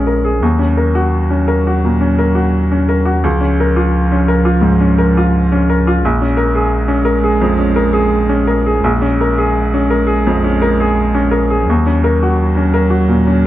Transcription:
0.00 0.43 A#1 medium
0.00 0.44 F2 soft
0.00 0.37 G#3 medium
0.00 0.44 C#4 soft
0.00 0.24 G#4 soft
0.00 0.07 A#4 soft
0.07 0.35 A#4 soft
0.24 0.42 G#4 soft
0.41 3.26 D#2 medium
0.41 1.80 D#2 medium
0.41 3.21 F#3 medium
0.59 0.87 C#4 soft
0.77 1.06 A#4 soft
0.95 1.52 F#4 soft
1.30 1.59 C#4 soft
1.48 1.76 A#4 soft
1.67 1.95 F#4 soft
1.84 2.12 A#2 soft
2.01 2.29 C#4 soft
2.19 2.47 A#4 soft
2.35 2.92 F#4 soft
2.72 3.00 C#4 soft
2.89 3.17 A#4 soft
3.05 3.24 F#4 soft
3.24 4.60 C#2 medium
3.24 6.04 C#2 medium
3.24 5.99 F3 medium
3.41 3.69 C#4 soft
3.60 3.88 A#4 soft
3.76 4.33 F4 soft
4.12 4.40 C#4 soft
4.28 4.57 A#4 medium
4.45 4.74 F4 soft
4.61 4.91 G#2 soft
4.80 5.09 C#4 soft
4.98 5.27 A#4 medium
5.17 5.73 F4 medium
5.52 5.79 C#4 soft
5.69 5.97 A#4 soft
5.87 6.04 F4 soft
6.02 8.81 A#1 medium
6.02 7.39 A#1 medium
6.02 8.78 G#3 medium
6.22 6.49 C#4 soft
6.37 6.65 A#4 medium
6.55 7.10 G#4 soft
6.88 7.17 C#4 medium
7.05 7.34 A#4 medium
7.24 7.52 G#4 medium
7.41 7.70 F2 soft
7.59 7.87 C#4 soft
7.76 8.05 A#4 medium
7.93 8.50 G#4 medium
8.29 8.58 C#4 medium
8.47 8.76 A#4 medium
8.66 8.94 G#4 medium
8.81 11.67 A#1 medium
8.81 10.21 A#1 medium
8.81 11.61 G#3 medium
9.02 9.30 C#4 medium
9.21 9.48 A#4 soft
9.38 9.94 G#4 medium
9.74 10.01 C#4 medium
9.90 10.18 A#4 medium
10.07 10.35 G#4 medium
10.27 10.54 F2 medium
10.44 10.71 C#4 soft
10.62 10.89 A#4 medium
10.80 11.35 G#4 medium
11.15 11.42 C#4 medium
11.31 11.59 A#4 medium
11.50 11.67 G#4 soft
11.64 13.47 D#2 medium
11.64 13.47 F#3 medium
11.70 13.06 D#2 medium
11.87 12.14 C#4 soft
12.04 12.31 A#4 medium
12.23 12.77 F#4 medium
12.57 12.84 C#4 soft
12.74 13.01 A#4 medium
12.90 13.19 F#4 soft
13.08 13.37 A#2 soft
13.27 13.47 C#4 soft

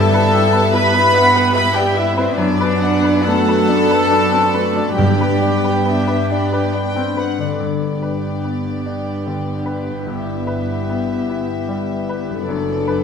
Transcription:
0.00 1.11 G2 medium
0.00 2.34 G2 medium
0.00 2.42 G2 medium
0.00 2.34 B3 medium
0.00 0.73 E4 medium
0.00 0.35 G4 medium
0.00 0.74 A4 loud
0.00 0.55 B4 medium
0.00 2.37 E5 medium
0.00 0.95 G5 medium
0.00 0.72 A5 medium
0.00 1.15 B5 medium
0.14 2.17 E4 soft
0.14 0.46 B4 medium
0.34 0.66 G4 medium
0.34 1.97 G4 medium
0.52 0.85 B4 medium
0.52 1.76 B4 medium
0.74 1.06 E4 medium
0.74 1.15 G4 medium
0.74 1.54 B4 loud
0.74 1.56 E5 medium
0.74 1.53 B5 medium
0.94 1.26 B4 medium
0.94 1.34 G5 medium
1.15 1.47 E5 medium
1.15 1.56 F#5 medium
1.15 3.67 B5 medium
1.35 1.68 B4 soft
1.35 2.42 G5 medium
1.54 2.38 E4 medium
1.54 1.76 B4 loud
1.54 1.88 E5 soft
1.54 2.42 E5 medium
1.54 1.75 B5 medium
1.75 1.97 G4 medium
1.75 3.02 B4 medium
1.75 1.96 D5 soft
1.75 1.96 G5 medium
1.96 2.17 E4 medium
1.96 2.42 G4 medium
1.96 2.17 E5 medium
1.96 2.30 E5 medium
2.17 2.38 C4 medium
2.17 2.42 E4 soft
2.17 2.38 B4 medium
2.17 2.38 C5 medium
2.37 4.93 F#2 medium
2.37 5.01 F#2 medium
2.37 3.23 B3 medium
2.37 3.25 D4 medium
2.37 3.24 D4 medium
2.37 2.80 D5 medium
2.37 3.25 D5 medium
2.60 4.53 B3 soft
2.60 2.95 B4 medium
2.81 3.24 D4 medium
2.81 3.17 D4 medium
2.81 3.22 F#5 medium
3.03 4.09 B4 medium
3.03 3.38 B4 soft
3.24 3.68 A3 medium
3.24 3.60 B3 medium
3.24 4.31 D4 medium
3.24 4.08 F#4 medium
3.24 4.97 A4 loud
3.24 4.08 F#5 medium
3.24 4.97 A5 medium
3.47 3.81 B4 soft
3.47 3.87 D5 medium
3.68 4.11 B3 medium
3.68 4.02 D4 medium
3.68 6.28 B5 medium
3.89 4.24 B4 soft
3.89 6.06 D5 medium
4.10 4.53 D4 medium
4.10 4.45 D4 soft
4.10 4.95 F#4 medium
4.10 5.62 B4 medium
4.10 4.96 D5 medium
4.31 4.53 C4 soft
4.31 5.40 D4 soft
4.54 4.97 A3 medium
4.54 5.18 B3 soft
4.54 4.89 B4 soft
4.75 5.01 F#3 soft
4.75 4.98 D4 soft
4.97 7.35 G2 medium
4.97 7.40 G2 medium
4.97 7.56 G2 medium
4.97 6.27 G2 medium
4.97 7.40 B3 medium
4.97 7.40 D4 medium
4.97 6.70 G4 medium
4.97 5.75 D5 medium
4.97 6.70 G5 medium
5.19 7.14 B3 soft
5.19 5.55 B4 soft
5.41 5.84 D4 soft
5.41 5.77 D4 soft
5.63 6.72 B4 soft
5.63 5.99 B4 soft
5.85 6.21 B3 soft
5.85 6.93 D4 medium
5.85 6.26 E5 medium
6.07 6.43 B4 soft
6.07 6.49 D5 soft
6.29 6.66 D4 medium
6.29 6.74 D5 medium
6.29 10.19 B5 soft
6.51 6.87 B4 soft
6.51 10.10 D5 soft
6.73 7.09 D4 soft
6.73 7.53 B4 soft
6.73 7.17 G5 medium
6.94 7.18 C4 soft
6.94 7.48 D4 soft
7.15 7.44 B3 soft
7.15 7.51 B4 soft
7.15 7.61 F#5 medium
7.38 9.88 G2 soft
7.38 7.63 D3 soft
7.38 7.60 D4 soft
7.45 11.35 B3 soft
7.50 10.06 D4 soft
7.54 10.02 B4 soft
7.58 12.43 G1 soft
7.58 12.43 G2 soft
7.58 10.03 G2 soft
7.58 12.42 B3 soft
7.58 12.43 B3 soft
7.58 10.03 D4 soft
7.58 12.42 G4 soft
7.58 10.03 D5 soft
8.02 8.69 B4 soft
8.44 9.10 B3 soft
8.86 9.51 D4 soft
9.27 9.91 D3 soft
9.66 10.07 B4 soft
9.89 12.41 G2 soft
9.98 12.45 E4 soft
10.03 12.42 G2 soft
10.03 12.41 B4 soft
10.07 12.43 E4 soft
10.07 12.47 E5 soft
10.47 11.12 B4 soft
10.90 11.53 B3 soft
11.29 11.92 E4 soft
11.69 12.31 G3 soft
12.09 12.48 B4 soft
12.29 13.04 F#2 soft
12.33 13.04 A3 soft
12.38 13.04 D4 soft
12.42 13.04 B4 soft
12.46 13.04 F#1 medium
12.46 13.04 F#2 medium
12.46 13.04 F#2 soft
12.46 13.04 B3 medium
12.46 13.04 D4 medium
12.46 13.04 A4 soft
12.46 13.04 D5 medium
12.88 13.04 B4 soft

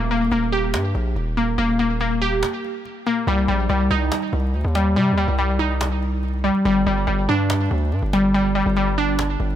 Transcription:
0.00 0.30 D#1 loud
0.10 0.31 A#3 medium
0.10 cajon slap soft
0.17 cajon slap soft
0.24 cajon slap soft
0.31 0.75 D#1 loud
0.31 1.36 A#3 medium
0.31 cajon slap medium
0.52 1.79 G4 medium
0.52 cajon slap soft
0.74 0.94 G2 loud
0.74 cajon slap loud
0.95 1.15 A#1 loud
0.95 cajon slap soft
1.16 1.57 D#1 loud
1.16 cajon slap soft
1.37 1.57 A#3 medium
1.37 cajon slap soft
1.58 2.43 D#1 loud
1.58 1.78 A#3 medium
1.58 cajon slap soft
1.79 1.99 A#3 medium
1.79 cajon slap soft
2.00 3.05 A#3 medium
2.00 cajon slap soft
2.22 3.27 G4 medium
2.43 cajon slap loud
2.64 cajon slap soft
2.85 cajon slap soft
3.06 3.27 A#3 medium
3.06 cajon slap soft
3.27 3.47 C2 loud
3.27 3.47 G3 medium
3.27 cajon slap soft
3.48 3.69 A#1 loud
3.48 3.68 G3 medium
3.48 cajon slap soft
3.69 3.90 C2 loud
3.69 4.74 G3 medium
3.69 cajon slap medium
3.91 4.11 C2 loud
3.91 5.17 D#4 medium
4.12 cajon slap loud
4.17 cajon slap soft
4.22 cajon slap soft
4.28 cajon slap soft
4.33 4.55 C2 loud
4.33 cajon slap soft
4.40 cajon slap soft
4.47 cajon slap soft
4.54 4.64 D2 loud
4.54 cajon slap soft
4.61 4.98 D#2 loud
4.61 cajon slap soft
4.68 cajon slap soft
4.75 4.95 G3 medium
4.75 cajon slap medium
4.96 5.14 C3 loud
4.96 5.16 G3 loud
4.96 cajon slap soft
5.12 5.27 D#2 loud
5.18 5.37 G3 medium
5.18 cajon slap soft
5.28 6.51 C2 loud
5.38 6.43 G3 medium
5.38 cajon slap soft
5.59 6.65 D#4 medium
5.59 cajon slap soft
5.81 cajon slap loud
6.02 cajon slap soft
6.23 cajon slap soft
6.28 cajon slap soft
6.34 cajon slap soft
6.39 cajon slap soft
6.44 6.64 G3 medium
6.44 cajon slap soft
6.55 cajon slap soft
6.65 6.86 G1 loud
6.65 6.85 G3 loud
6.65 cajon slap soft
6.86 7.07 G1 loud
6.86 7.06 G3 medium
6.86 cajon slap soft
7.07 7.28 G1 loud
7.07 8.12 G3 medium
7.07 cajon slap medium
7.29 7.69 G2 loud
7.29 8.55 D4 medium
7.50 cajon slap loud
7.55 cajon slap soft
7.60 cajon slap soft
7.66 cajon slap soft
7.71 7.94 D2 loud
7.71 cajon slap soft
7.78 cajon slap soft
7.85 cajon slap soft
7.92 8.02 G2 loud
7.92 cajon slap soft
7.99 8.63 G1 loud
7.99 cajon slap soft
8.06 cajon slap soft
8.13 8.33 G3 medium
8.13 cajon slap medium
8.34 8.54 G3 loud
8.34 cajon slap soft
8.55 8.75 G3 medium
8.55 cajon slap soft
8.63 9.37 G1 loud
8.63 cajon slap soft
8.70 cajon slap soft
8.76 9.55 G3 medium
8.76 cajon slap medium
8.98 9.55 D4 medium
9.19 cajon slap loud
9.40 9.55 G1 loud
9.40 cajon slap soft
9.50 cajon slap soft

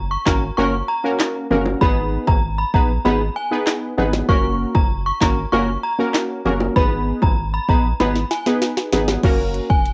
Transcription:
0.00 0.17 F#1 medium
0.11 0.21 C#6 medium
0.26 0.51 G#1 medium
0.26 0.44 A#3 medium
0.26 0.44 C#4 medium
0.26 0.44 F#4 medium
0.26 0.44 A#4 medium
0.26 0.36 A#5 medium
0.26 kick medium
0.26 snare loud
0.26 clap medium
0.57 0.82 F#1 loud
0.57 0.75 A#3 medium
0.57 0.75 C#4 medium
0.57 0.75 F#4 medium
0.57 0.75 A#4 loud
0.57 0.67 C#6 medium
0.57 high bongo medium
0.88 0.98 A#5 medium
1.04 1.47 A#3 medium
1.04 1.47 C#4 medium
1.04 1.47 F#4 medium
1.04 1.47 A#4 medium
1.20 snare loud
1.20 clap medium
1.50 1.75 F#1 medium
1.50 1.79 A#3 medium
1.50 1.79 C#4 medium
1.50 1.79 F#4 medium
1.50 1.79 A#4 medium
1.50 low bongo medium
1.66 high bongo medium
1.81 2.17 G#1 loud
1.81 2.38 B3 medium
1.81 2.38 D#4 medium
1.81 2.38 G#4 medium
1.81 2.38 B4 loud
1.81 1.91 B5 loud
1.81 kick medium
1.81 high bongo medium
2.27 2.64 G#1 medium
2.27 2.38 A#5 medium
2.27 kick loud
2.27 high bongo medium
2.58 2.68 B5 medium
2.74 2.98 A#1 medium
2.74 2.91 B3 medium
2.74 2.91 D#4 medium
2.74 2.91 G#4 medium
2.74 2.91 B4 medium
2.74 2.84 A#5 medium
2.74 kick medium
3.05 3.29 G#1 loud
3.05 3.22 B3 medium
3.05 3.22 D#4 medium
3.05 3.22 G#4 medium
3.05 3.22 B4 loud
3.05 3.15 B5 medium
3.05 high bongo medium
3.36 3.46 G#5 medium
3.51 3.94 B3 medium
3.51 3.94 D#4 medium
3.51 3.94 G#4 medium
3.51 3.94 B4 medium
3.67 snare loud
3.67 clap medium
3.98 4.22 G#1 medium
3.98 4.26 B3 medium
3.98 4.26 D#4 medium
3.98 4.26 G#4 medium
3.98 4.27 B4 medium
3.98 low bongo medium
4.13 snare medium
4.13 high bongo medium
4.29 4.65 F#1 loud
4.29 4.86 A#3 medium
4.29 4.86 C#4 medium
4.29 4.86 F#4 medium
4.29 4.86 A#4 loud
4.29 4.39 C#6 loud
4.29 kick loud
4.29 high bongo medium
4.75 5.11 F#1 medium
4.75 4.85 A#5 medium
4.75 kick loud
4.75 high bongo medium
5.06 5.16 C#6 medium
5.21 5.46 G#1 medium
5.21 5.39 A#3 medium
5.21 5.39 C#4 medium
5.21 5.39 F#4 medium
5.21 5.39 A#4 medium
5.21 5.32 A#5 medium
5.21 kick medium
5.21 snare loud
5.21 clap medium
5.52 5.77 F#1 loud
5.52 5.70 A#3 loud
5.52 5.70 C#4 medium
5.52 5.70 F#4 medium
5.52 5.70 A#4 loud
5.52 5.62 C#6 medium
5.52 high bongo medium
5.83 5.93 A#5 medium
5.99 6.42 A#3 medium
5.99 6.42 C#4 medium
5.99 6.42 F#4 medium
5.99 6.42 A#4 medium
6.14 snare loud
6.14 clap medium
6.45 6.69 F#1 medium
6.45 6.74 A#3 medium
6.45 6.74 C#4 medium
6.45 6.74 F#4 medium
6.45 6.74 A#4 medium
6.45 low bongo medium
6.60 high bongo medium
6.76 7.12 G#1 loud
6.76 7.33 B3 medium
6.76 7.33 D#4 medium
6.76 7.33 G#4 medium
6.76 7.33 B4 loud
6.76 6.86 B5 loud
6.76 kick loud
6.76 high bongo medium
7.22 7.59 G#1 medium
7.22 7.33 A#5 medium
7.22 kick loud
7.22 high bongo medium
7.54 7.64 B5 medium
7.69 7.93 A#1 medium
7.69 7.86 B3 medium
7.69 7.86 D#4 medium
7.69 7.86 G#4 medium
7.69 7.86 B4 medium
7.69 7.79 A#5 medium
7.69 kick medium
8.00 8.24 G#1 loud
8.00 8.17 B3 loud
8.00 8.17 D#4 medium
8.00 8.17 G#4 medium
8.00 8.17 B4 loud
8.00 8.10 B5 medium
8.00 snare medium
8.00 high bongo medium
8.15 snare medium
8.31 8.41 G#5 medium
8.31 snare medium
8.46 8.89 B3 medium
8.46 8.89 D#4 medium
8.46 8.89 G#4 medium
8.46 8.89 B4 medium
8.46 snare medium
8.62 snare medium
8.77 snare medium
8.93 9.17 G#1 medium
8.93 9.21 B3 medium
8.93 9.21 D#4 medium
8.93 9.21 G#4 medium
8.93 9.21 B4 medium
8.93 snare loud
8.93 low bongo medium
9.08 snare medium
9.08 high bongo medium
9.23 9.60 F#1 loud
9.23 9.81 A#3 medium
9.23 9.81 C#4 medium
9.23 9.81 F#4 medium
9.23 9.81 A#4 loud
9.23 kick loud
9.23 closed hi-hat medium
9.23 crash loud
9.23 high bongo medium
9.54 closed hi-hat medium
9.70 9.93 F1 loud
9.70 9.90 G#5 medium
9.70 kick loud
9.85 closed hi-hat medium

